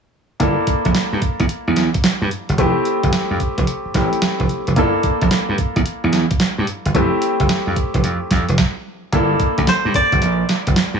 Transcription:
0.40 G1 A#3 D4 E4 A4, kick, closed hi-hat
0.67 kick, closed hi-hat
0.85 A#1, kick, closed hi-hat
0.95 muted slap bass stroke, snare, closed hi-hat
1.12 G2
1.22 kick, closed hi-hat
1.40 E2, kick, closed hi-hat
1.49 muted slap bass stroke, closed hi-hat
1.67 E2
1.76 snare, closed hi-hat
1.94 kick, closed hi-hat
2.04 snare, closed hi-hat
2.21 G2
2.31 closed hi-hat
2.49 G1, closed hi-hat
2.58 F1 A3 C4 E4 G4, kick, closed hi-hat
2.85 closed hi-hat
3.03 G1, kick, closed hi-hat
3.13 muted slap bass stroke, snare, closed hi-hat
3.30 F2
3.40 kick, closed hi-hat
3.58 F1, kick, closed hi-hat
3.67 closed hi-hat
3.85 muted slap bass stroke
3.94 A1 A3 C4 E4 G4, kick, snare, closed hi-hat
4.13 closed hi-hat
4.22 muted slap bass stroke, snare, closed hi-hat
4.40 F1, kick
4.49 closed hi-hat
4.67 F1, closed hi-hat
4.76 G1 A#3 D4 E4 A4, kick, closed hi-hat
5.03 kick, closed hi-hat
5.21 A#1, kick, closed hi-hat
5.31 muted slap bass stroke, snare, closed hi-hat
5.49 G2
5.58 kick, closed hi-hat
5.76 E2, kick, closed hi-hat
5.86 muted slap bass stroke, closed hi-hat
6.04 E2
6.13 snare, closed hi-hat
6.31 kick, closed hi-hat
6.40 snare, closed hi-hat
6.58 G2
6.67 closed hi-hat
6.85 G1, closed hi-hat
6.94 F1 A3 C4 E4 G4, kick, closed hi-hat
7.22 closed hi-hat
7.40 G1, kick, closed hi-hat
7.49 snare, closed hi-hat
7.67 F2
7.76 kick, closed hi-hat
7.94 F1, kick, closed hi-hat
8.03 F2, closed hi-hat
8.31 F2, kick, snare, closed hi-hat
8.49 F1, closed hi-hat
8.58 kick, snare
9.12 G1 A#3 D4 E4 A4, kick, closed hi-hat
9.40 kick, closed hi-hat
9.58 D2, kick, closed hi-hat
9.67 C5, muted slap bass stroke, snare, closed hi-hat
9.85 G2
9.94 D5, kick, closed hi-hat
10.12 G1, kick, closed hi-hat
10.22 A#1, closed hi-hat
10.49 snare, closed hi-hat
10.67 G1, kick, closed hi-hat
10.76 snare, closed hi-hat
10.94 G2

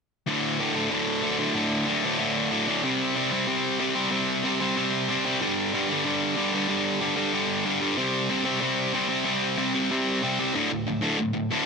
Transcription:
0.27 D2 A2 D3
0.60 D2 A2 D3
0.75 D2 A2 D3
0.90 D2 A2 D3
1.22 D2 A2 D3
1.39 D2 A2 D3
1.55 D2 A2 D3
1.86 D2 A2 D3
2.04 D2 A2 D3
2.19 D2 A2 D3
2.51 D2 A2 D3
2.67 D2 A2 D3
2.84 C3 G3 C4
3.15 C3 G3 C4
3.31 C3 G3 C4
3.47 C3 G3 C4
3.80 C3 G3 C4
3.95 C3 G3 C4
4.11 C3 G3 C4
4.44 C3 G3 C4
4.60 C3 G3 C4
4.76 C3 G3 C4
5.09 C3 G3 C4
5.26 C3 G3 C4
5.42 G2 D3 G3
5.74 G2 D3 G3
5.91 G2 D3 G3
6.05 G2 D3 G3
6.36 G2 D3 G3
6.53 G2 D3 G3
6.69 G2 D3 G3
7.01 G2 D3 G3
7.16 G2 D3 G3
7.33 G2 D3 G3
7.65 G2 D3 G3
7.81 G2 D3 G3
7.98 C3 G3 C4
8.30 C3 G3 C4
8.45 C3 G3 C4
8.60 C3 G3 C4
8.93 C3 G3 C4
9.09 C3 G3 C4
9.25 C3 G3 C4
9.57 C3 G3 C4
9.74 C3 G3 C4
9.91 C3 G3 C4
10.23 C3 G3 C4
10.40 C3 G3 C4
10.54 D2 A2 D3
10.71 D2 A2
10.87 D2 A2
11.01 D2 A2 D3
11.19 D2 A2
11.33 D2 A2
11.51 D2 A2 D3

